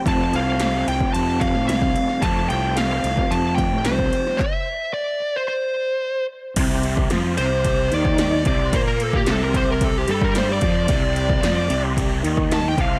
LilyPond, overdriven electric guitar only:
\new Staff \with { instrumentName = "Overdriven electric guitar" } { \clef bass \time 4/4 \key f \major \tempo 4 = 111 <f, c f a c' f'>1 | <f, c f a c' f'>1 | r1 | c4 f8 c4 ees4 c8 |
bes4 c4. g4 f8 | c4 f8 c4 ees4 c8 | }